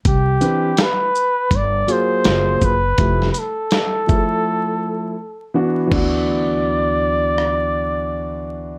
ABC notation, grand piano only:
X:1
M:4/4
L:1/8
Q:"Swing 16ths" 1/4=82
K:D
V:1 name="Grand piano"
z [E,=CDB] z3 [F,_B,=F^G] [^F,^A,^EG] z | [=F,A,EG] z2 [F,A,E^GA]3 z [E,B,D^F] | [E,B,DF]8 |]